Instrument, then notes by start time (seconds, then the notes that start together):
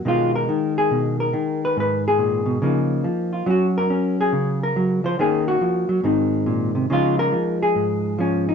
hollow-body jazz guitar
0.05 B2 D#3 G#3 D#4 F4
0.35 A#4
0.49 D#3
0.78 G#4
0.91 B2
1.20 A#4
1.33 D#3
1.65 B4
1.77 G#2 B4
2.08 G#4
2.18 A#2
2.46 B2
2.62 C#3 F3 A#3 D#4
3.04 F3
3.33 F4
3.46 F#3 C#4
3.50 F#4
3.78 A#4
3.90 C#4
4.21 G#4
4.33 C#3
4.63 A#4
4.76 F#3
5.04 F3 C5
5.19 D#3 A#3 C#4 G#4
5.48 F#4
5.61 F3
5.89 F#3
6.03 G#2 D#3 C4 D#4
6.46 A#2
6.75 C3
6.90 C#3 F3 G#3 D#4 F4
7.19 A#4
7.32 F3
7.63 G#4
7.75 G#2
8.19 F3 C#4
8.49 D#4